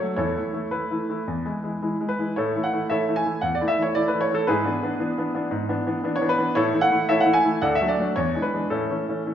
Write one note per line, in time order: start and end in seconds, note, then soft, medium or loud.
0.00 0.12 F#3 soft
0.00 0.13 A3 soft
0.16 0.35 E2 medium
0.16 0.36 E4 soft
0.16 0.68 A4 soft
0.16 0.67 C#5 medium
0.36 0.49 E3 soft
0.36 0.49 A3 soft
0.36 0.49 E4 soft
0.53 0.66 E3 soft
0.53 0.67 A3 soft
0.53 0.66 E4 soft
0.71 0.85 E3 soft
0.71 0.85 A3 soft
0.71 0.90 E4 soft
0.71 2.07 B4 medium
0.91 1.03 E3 soft
0.91 1.04 A3 soft
0.91 1.04 E4 soft
1.09 1.22 E3 soft
1.09 1.22 A3 soft
1.09 1.23 E4 soft
1.28 1.44 E2 soft
1.45 1.58 E3 soft
1.45 1.58 G#3 soft
1.45 1.58 E4 soft
1.63 1.76 E3 soft
1.63 1.76 G#3 soft
1.63 1.77 E4 soft
1.82 1.95 E3 soft
1.82 1.95 G#3 soft
1.82 1.95 E4 soft
2.00 2.13 E3 soft
2.00 2.13 G#3 soft
2.00 2.14 E4 soft
2.09 2.36 B4 medium
2.19 2.31 E3 soft
2.19 2.32 G#3 soft
2.19 2.32 E4 soft
2.36 2.54 A2 medium
2.36 2.55 E4 soft
2.36 2.62 A4 soft
2.36 2.60 C#5 medium
2.56 2.68 E3 soft
2.56 2.68 A3 soft
2.56 2.68 E4 soft
2.63 2.87 F#5 medium
2.73 2.85 E3 soft
2.73 2.85 A3 soft
2.73 2.86 E4 soft
2.90 3.03 E3 soft
2.90 3.03 A3 soft
2.90 3.03 E4 soft
2.90 3.15 A4 soft
2.90 3.15 C#5 medium
2.90 3.16 E5 medium
3.08 3.20 E3 soft
3.08 3.20 A3 soft
3.08 3.21 E4 soft
3.16 3.42 G#5 medium
3.25 3.37 E3 soft
3.25 3.38 A3 soft
3.25 3.38 E4 soft
3.41 3.59 E2 soft
3.41 3.55 F#5 medium
3.55 3.68 D5 medium
3.61 3.73 E3 soft
3.61 3.74 A3 soft
3.61 3.73 E4 soft
3.68 3.81 E5 medium
3.78 3.90 E3 soft
3.78 3.91 A3 soft
3.78 3.91 E4 soft
3.82 3.95 C#5 medium
3.95 4.08 E3 soft
3.95 4.08 A3 soft
3.95 4.08 E4 soft
3.95 4.08 D5 medium
4.08 4.21 B4 medium
4.13 4.25 E3 soft
4.13 4.26 A3 soft
4.13 4.26 E4 soft
4.21 4.34 C#5 medium
4.31 4.43 E3 soft
4.31 4.43 A3 soft
4.31 4.43 E4 soft
4.31 4.47 A4 medium
4.47 4.65 G#2 medium
4.47 6.14 E4 medium
4.47 6.14 G#4 medium
4.47 5.49 B4 medium
4.65 4.77 E3 soft
4.65 4.78 B3 soft
4.65 4.78 D4 soft
4.83 4.95 E3 soft
4.83 4.95 B3 soft
4.83 4.96 D4 soft
4.99 5.12 E3 soft
4.99 5.12 B3 soft
4.99 5.13 D4 soft
5.17 5.30 E3 soft
5.17 5.30 B3 soft
5.17 5.31 D4 soft
5.34 5.47 E3 soft
5.34 5.47 B3 soft
5.34 5.48 D4 soft
5.51 5.68 G#2 medium
5.68 5.81 E3 soft
5.68 5.82 B3 soft
5.68 5.82 D4 soft
5.86 5.99 E3 soft
5.86 5.99 B3 soft
5.86 6.00 D4 medium
6.04 6.16 E3 medium
6.04 6.17 B3 medium
6.04 6.17 D4 medium
6.16 6.29 C#5 medium
6.20 6.33 E3 soft
6.20 6.34 B3 soft
6.20 6.34 D4 medium
6.29 6.56 B4 medium
6.38 6.51 E3 medium
6.38 6.51 B3 soft
6.38 6.51 D4 medium
6.55 6.73 A2 medium
6.55 6.73 E4 medium
6.55 6.81 A4 medium
6.55 6.79 C#5 medium
6.73 6.86 E3 medium
6.73 6.86 A3 medium
6.73 6.87 E4 medium
6.81 7.08 F#5 medium
6.91 7.04 E3 soft
6.91 7.04 A3 soft
6.91 7.04 E4 medium
7.09 7.21 E3 medium
7.09 7.22 A3 soft
7.09 7.22 E4 soft
7.09 7.21 A4 medium
7.09 7.21 C#5 medium
7.09 7.22 E5 medium
7.20 7.34 F#5 medium
7.25 7.38 E3 soft
7.25 7.38 A3 soft
7.25 7.39 E4 medium
7.33 7.61 G#5 medium
7.44 7.56 E3 soft
7.44 7.57 A3 soft
7.44 7.57 E4 medium
7.62 7.79 D2 medium
7.62 7.74 A4 medium
7.62 7.74 D5 medium
7.62 7.75 F#5 medium
7.75 7.88 E5 medium
7.81 7.93 F#3 soft
7.81 7.94 A3 soft
7.81 7.94 D4 soft
7.88 8.04 D5 medium
7.99 8.11 F#3 soft
7.99 8.12 A3 soft
7.99 8.12 D4 soft
8.16 8.33 E2 medium
8.16 8.42 C#5 medium
8.35 8.48 E3 soft
8.35 8.47 G#3 soft
8.35 8.48 D4 soft
8.42 8.67 B4 medium
8.53 8.66 E3 soft
8.53 8.66 G#3 soft
8.53 8.66 D4 soft
8.70 8.88 A2 medium
8.70 8.89 C#4 soft
8.70 9.34 E4 soft
8.70 9.34 A4 medium
8.90 9.03 E3 soft
8.90 9.03 A3 soft
8.90 9.03 C#4 soft
9.09 9.21 E3 soft
9.09 9.21 A3 soft
9.09 9.22 C#4 soft
9.26 9.34 E3 soft
9.26 9.34 A3 soft
9.26 9.34 C#4 soft